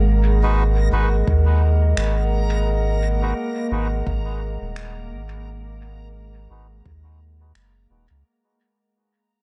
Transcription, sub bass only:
0, 0, Header, 1, 2, 480
1, 0, Start_track
1, 0, Tempo, 697674
1, 1836, Time_signature, 4, 2, 24, 8
1, 6484, End_track
2, 0, Start_track
2, 0, Title_t, "Sub bass"
2, 0, Program_c, 0, 38
2, 0, Note_on_c, 0, 32, 80
2, 617, Note_off_c, 0, 32, 0
2, 636, Note_on_c, 0, 32, 95
2, 852, Note_off_c, 0, 32, 0
2, 877, Note_on_c, 0, 39, 82
2, 1337, Note_off_c, 0, 39, 0
2, 1356, Note_on_c, 0, 32, 78
2, 2297, Note_off_c, 0, 32, 0
2, 2557, Note_on_c, 0, 32, 92
2, 2773, Note_off_c, 0, 32, 0
2, 2797, Note_on_c, 0, 32, 78
2, 3150, Note_off_c, 0, 32, 0
2, 3176, Note_on_c, 0, 27, 84
2, 3517, Note_on_c, 0, 32, 79
2, 3527, Note_off_c, 0, 27, 0
2, 4457, Note_off_c, 0, 32, 0
2, 4476, Note_on_c, 0, 32, 91
2, 4692, Note_off_c, 0, 32, 0
2, 4716, Note_on_c, 0, 39, 83
2, 5177, Note_off_c, 0, 39, 0
2, 5197, Note_on_c, 0, 30, 76
2, 5412, Note_off_c, 0, 30, 0
2, 5436, Note_on_c, 0, 27, 95
2, 5559, Note_off_c, 0, 27, 0
2, 5577, Note_on_c, 0, 37, 90
2, 5665, Note_off_c, 0, 37, 0
2, 6484, End_track
0, 0, End_of_file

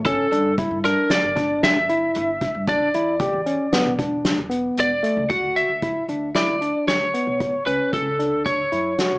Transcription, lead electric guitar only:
0, 0, Header, 1, 2, 480
1, 0, Start_track
1, 0, Key_signature, 2, "major"
1, 0, Tempo, 525394
1, 51, Time_signature, 5, 2, 24, 8
1, 8391, End_track
2, 0, Start_track
2, 0, Title_t, "Lead electric guitar"
2, 0, Program_c, 0, 29
2, 54, Note_on_c, 0, 69, 99
2, 498, Note_off_c, 0, 69, 0
2, 778, Note_on_c, 0, 70, 80
2, 1014, Note_on_c, 0, 74, 82
2, 1020, Note_off_c, 0, 70, 0
2, 1492, Note_off_c, 0, 74, 0
2, 1496, Note_on_c, 0, 76, 103
2, 2453, Note_off_c, 0, 76, 0
2, 2456, Note_on_c, 0, 74, 77
2, 4332, Note_off_c, 0, 74, 0
2, 4384, Note_on_c, 0, 74, 73
2, 4841, Note_on_c, 0, 78, 82
2, 4867, Note_off_c, 0, 74, 0
2, 5082, Note_on_c, 0, 76, 73
2, 5089, Note_off_c, 0, 78, 0
2, 5529, Note_off_c, 0, 76, 0
2, 5807, Note_on_c, 0, 74, 82
2, 6252, Note_off_c, 0, 74, 0
2, 6286, Note_on_c, 0, 73, 91
2, 6970, Note_off_c, 0, 73, 0
2, 7004, Note_on_c, 0, 71, 74
2, 7228, Note_off_c, 0, 71, 0
2, 7249, Note_on_c, 0, 69, 71
2, 7695, Note_off_c, 0, 69, 0
2, 7728, Note_on_c, 0, 73, 75
2, 8391, Note_off_c, 0, 73, 0
2, 8391, End_track
0, 0, End_of_file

